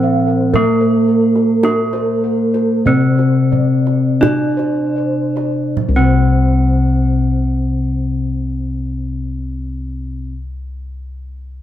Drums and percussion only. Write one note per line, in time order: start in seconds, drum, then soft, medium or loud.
0.54 kendang low medium
1.36 kendang slap soft
1.63 kendang high medium
1.93 kendang slap soft
2.54 kendang slap soft
2.86 kendang low medium
3.19 kendang slap soft
3.52 kendang low soft
3.87 kendang slap soft
4.23 kendang high medium
4.23 kendang low medium
4.60 kendang slap soft
5.37 kendang slap soft
5.77 kendang low medium